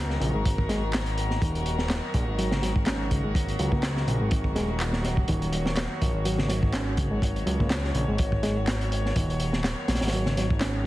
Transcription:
Already playing: analog synth bass C#2, string section D#3 F#3 A#3 F#4 A#4
0.10 snare
0.20 analog synth bass A#1, reed electric piano C#3, closed hi-hat
0.34 analog synth bass G#1, reed electric piano G#3
0.45 kick, closed hi-hat
0.58 kick
0.69 reed electric piano G#3, snare, closed hi-hat
0.93 snare, clap, closed hi-hat
1.06 closed hi-hat
1.18 closed hi-hat
1.30 snare
1.41 analog synth bass D#1, reed electric piano D#3, kick, closed hi-hat
1.55 closed hi-hat
1.66 closed hi-hat
1.78 snare
1.90 snare, clap, closed hi-hat
2.14 analog synth bass A#1, kick, closed hi-hat
2.28 analog synth bass G#1
2.38 reed electric piano F#3, closed hi-hat
2.51 reed electric piano C#3, snare
2.62 reed electric piano F#3, snare, closed hi-hat
2.76 kick
2.86 reed electric piano C#4, snare, clap, closed hi-hat
3.11 reed electric piano C#3, kick, closed hi-hat
3.24 reed electric piano G#3
3.35 kick, closed hi-hat
3.48 closed hi-hat
3.59 analog synth bass C#2, reed electric piano F#3, closed hi-hat
3.72 reed electric piano A#3, kick
3.83 snare, clap, closed hi-hat
3.97 snare
4.07 analog synth bass A#1, reed electric piano C#3, closed hi-hat
4.21 analog synth bass G#1, reed electric piano G#3
4.31 kick, closed hi-hat
4.44 kick
4.55 analog synth bass D#1, reed electric piano G#3, snare, closed hi-hat
4.80 clap, closed hi-hat
4.93 snare
5.04 snare, closed hi-hat
5.17 kick
5.28 analog synth bass D#1, reed electric piano D#3, string section C#5, kick, closed hi-hat
5.42 closed hi-hat
5.53 closed hi-hat
5.66 snare
5.76 snare, clap, closed hi-hat
6.02 analog synth bass A#1, kick, closed hi-hat
6.14 analog synth bass G#1
6.25 reed electric piano F#3, closed hi-hat
6.38 reed electric piano C#3, snare
6.49 reed electric piano F#3, snare, closed hi-hat
6.63 kick
6.73 reed electric piano C#4, snare, clap, closed hi-hat
6.97 reed electric piano C#3, kick, closed hi-hat
7.11 reed electric piano G#3
7.22 kick, closed hi-hat
7.36 closed hi-hat
7.46 analog synth bass C#2, reed electric piano F#3, closed hi-hat
7.59 reed electric piano A#3, kick
7.70 snare, clap, closed hi-hat
7.85 snare
7.94 analog synth bass A#1, reed electric piano C#3, closed hi-hat
8.08 analog synth bass G#1, reed electric piano G#3
8.18 kick, closed hi-hat
8.32 kick
8.43 reed electric piano G#3, snare, closed hi-hat
8.67 snare, clap, closed hi-hat
8.81 closed hi-hat
8.92 closed hi-hat
9.06 snare
9.16 analog synth bass D#1, reed electric piano D#3, kick, closed hi-hat
9.30 closed hi-hat
9.40 closed hi-hat
9.53 snare
9.64 snare, clap, closed hi-hat
9.88 analog synth bass A#1, snare, closed hi-hat
9.95 snare, closed hi-hat
10.01 analog synth bass G#1, snare, closed hi-hat
10.07 snare, closed hi-hat
10.13 reed electric piano F#3, closed hi-hat
10.26 reed electric piano C#3, snare
10.37 reed electric piano F#3, snare, closed hi-hat
10.50 kick
10.60 reed electric piano C#4, snare, clap, closed hi-hat

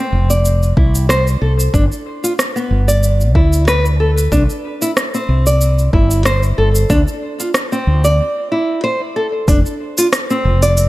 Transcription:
Already playing: nylon-string guitar C4
0.12 fretless electric bass F1
0.30 nylon-string guitar D5, shaker
0.45 shaker
0.63 shaker
0.77 fretless electric bass C2, nylon-string guitar E4, kick
0.95 shaker
1.09 nylon-string guitar C5, cross-stick, shaker
1.27 shaker
1.42 fretless electric bass C2, nylon-string guitar A4
1.60 shaker
1.74 fretless electric bass G1, nylon-string guitar D4, kick, shaker
1.92 shaker
2.24 nylon-string guitar F4, shaker
2.39 cross-stick, shaker
2.56 nylon-string guitar B3, shaker
2.71 fretless electric bass G1
2.88 nylon-string guitar D5, shaker
3.03 shaker
3.21 shaker
3.35 fretless electric bass D2, nylon-string guitar E4, kick
3.53 shaker
3.68 nylon-string guitar B4, cross-stick, shaker
3.86 shaker
4.00 nylon-string guitar A4
4.18 shaker
4.32 fretless electric bass C2, nylon-string guitar D4, kick, shaker
4.50 shaker
4.82 nylon-string guitar E4, shaker
4.97 cross-stick, shaker
5.14 nylon-string guitar C4, shaker
5.29 fretless electric bass C2
5.46 nylon-string guitar D5, shaker
5.61 shaker
5.79 shaker
5.93 fretless electric bass G1, nylon-string guitar E4, kick
6.11 shaker
6.25 nylon-string guitar C5, cross-stick, shaker
6.43 shaker
6.58 fretless electric bass G1, nylon-string guitar A4
6.75 shaker
6.90 fretless electric bass D2, nylon-string guitar D4, kick, shaker
7.08 shaker
7.40 nylon-string guitar F4, shaker
7.54 cross-stick, shaker
7.72 nylon-string guitar C4, shaker
7.87 fretless electric bass D2
8.04 nylon-string guitar D5, shaker
8.52 nylon-string guitar E4
8.84 nylon-string guitar C5
9.16 nylon-string guitar A4
9.48 fretless electric bass F1, nylon-string guitar D4, kick, open hi-hat, shaker
9.66 shaker
9.98 nylon-string guitar F4, open hi-hat, shaker
10.13 cross-stick, open hi-hat, shaker
10.30 nylon-string guitar C4, shaker
10.45 fretless electric bass F1
10.62 nylon-string guitar D5, open hi-hat, shaker
10.77 open hi-hat, shaker

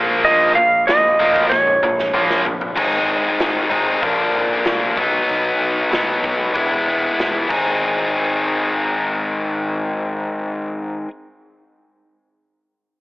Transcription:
Already playing: picked electric bass A#1, overdriven electric guitar A#2 F3 A#3
0.25 picked electric bass A#1, overdriven electric guitar A#2 F3 A#3, electric slide guitar D#5, open hi-hat
0.55 overdriven electric guitar A#2 F3, electric slide guitar F5
0.87 picked electric bass A#1, overdriven electric guitar A#2 F3, electric slide guitar D#5, snare, open hi-hat
1.19 picked electric bass A#1, overdriven electric guitar A#2 F3 A#3
1.36 kick
1.50 picked electric bass A#1, overdriven electric guitar A#2 F3, electric slide guitar C#5, kick, snare
1.67 high tom
1.83 overdriven electric guitar A#2 F3, mid tom
1.99 snare
2.14 picked electric bass A#1, overdriven electric guitar A#2 F3 A#3, mid tom
2.30 snare
2.45 picked electric bass A#1, overdriven electric guitar A#2 F3, floor tom
2.61 floor tom
2.76 picked electric bass G#1, overdriven electric guitar G#2 D#3 G#3 C4 D#4, kick, crash
3.40 picked electric bass G#1, snare, open hi-hat
3.70 picked electric bass G#1, overdriven electric guitar D#3 G#3 C4 D#4, kick
3.74 overdriven electric guitar G#2
4.01 picked electric bass A#1, overdriven electric guitar A#2 D3 F3 A#3, kick, open hi-hat
4.05 overdriven electric guitar D4
4.34 picked electric bass G#1
4.65 picked electric bass C2, snare, open hi-hat
4.97 picked electric bass B1, overdriven electric guitar B2 F#3 B3 D#4, kick
5.29 picked electric bass B1, open hi-hat
5.60 picked electric bass B1
5.91 overdriven electric guitar B2 F#3 B3 D#4, picked electric bass B2, snare, open hi-hat
6.24 picked electric bass B1, kick
6.54 picked electric bass E1, overdriven electric guitar E3 G#3 B3 E4, kick, open hi-hat
6.86 picked electric bass E1
7.18 picked electric bass E1, snare, open hi-hat
7.49 picked electric bass G#1, overdriven electric guitar G#2 D#3 G#3 C4 D#4 G#4, kick, crash

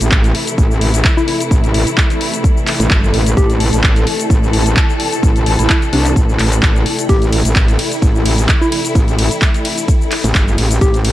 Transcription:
Already playing: string section C3 E3 A3 E4, ambient pad E4 A4 D5 D6
0.01 wobble bass A1, closed hi-hat, shaker
0.12 kick, clap, shaker
0.24 closed hi-hat, shaker
0.35 open hi-hat
0.47 closed hi-hat, shaker
0.58 wobble bass A1, kick, shaker
0.71 ambient pad G5, shaker
0.81 open hi-hat
0.94 closed hi-hat, shaker
1.05 kick, clap, shaker
1.17 soft synth lead E4, shaker
1.28 soft synth lead E4, open hi-hat
1.41 closed hi-hat, shaker
1.51 wobble bass A1, kick, shaker
1.64 closed hi-hat, shaker
1.74 open hi-hat
1.87 closed hi-hat, shaker
1.98 kick, clap, shaker
2.10 closed hi-hat, shaker
2.21 open hi-hat
2.34 closed hi-hat, shaker
2.44 kick, shaker
2.57 shaker
2.67 clap, open hi-hat
2.80 wobble bass A1, closed hi-hat, shaker
2.91 wobble bass G1, kick, clap, shaker
3.04 shaker
3.14 wobble bass A1, open hi-hat
3.26 closed hi-hat, shaker
3.37 wobble bass A1, soft synth lead G4, string section A4, kick, shaker
3.50 closed hi-hat, shaker
3.60 open hi-hat
3.73 wobble bass A1, closed hi-hat, shaker
3.84 kick, clap, shaker
3.96 closed hi-hat, shaker
4.07 open hi-hat
4.20 closed hi-hat, shaker
4.30 wobble bass A1, kick, shaker
4.43 shaker
4.53 open hi-hat
4.66 closed hi-hat, shaker
4.77 kick, clap, shaker
4.90 shaker
5.00 open hi-hat
5.13 closed hi-hat, shaker
5.23 wobble bass A1, kick, shaker
5.36 closed hi-hat, shaker
5.46 open hi-hat
5.59 wobble bass A1, soft synth lead E4, closed hi-hat, shaker
5.70 soft synth lead E4, kick, clap, shaker
5.82 closed hi-hat, shaker
5.93 wobble bass C2, soft synth lead D4, open hi-hat
6.05 soft synth lead D4, closed hi-hat, shaker
6.16 wobble bass A1, kick, shaker
6.29 shaker
6.39 wobble bass A1, clap, open hi-hat
6.52 closed hi-hat, shaker
6.63 wobble bass A1, kick, clap, shaker
6.76 shaker
6.86 open hi-hat
6.99 closed hi-hat, shaker
7.09 wobble bass A1, string section E4, soft synth lead G4, kick, ride, shaker
7.22 closed hi-hat, shaker
7.33 open hi-hat, ride
7.45 wobble bass A1, closed hi-hat, shaker
7.56 kick, clap, ride, shaker
7.68 closed hi-hat, shaker
7.79 open hi-hat, ride
7.92 closed hi-hat, shaker
8.02 wobble bass A1, kick, ride, shaker
8.15 shaker
8.26 open hi-hat, ride
8.38 closed hi-hat, shaker
8.49 kick, clap, ride, shaker
8.61 soft synth lead E4, shaker
8.72 soft synth lead E4, open hi-hat, ride
8.85 closed hi-hat, shaker
8.95 wobble bass A1, kick, ride, shaker
9.08 closed hi-hat, shaker
9.19 open hi-hat, ride
9.31 closed hi-hat, shaker
9.42 kick, clap, ride, shaker
9.54 closed hi-hat, shaker
9.65 open hi-hat, ride
9.78 closed hi-hat, shaker
9.88 kick, ride, shaker
10.01 shaker
10.12 clap, open hi-hat, ride
10.24 wobble bass A1, closed hi-hat, shaker
10.35 wobble bass G1, kick, clap, ride, shaker
10.48 shaker
10.58 wobble bass A1, open hi-hat, ride
10.71 closed hi-hat, shaker
10.81 wobble bass A1, string section C4, soft synth lead G4, kick, ride, shaker
10.94 closed hi-hat, shaker
11.05 open hi-hat, ride

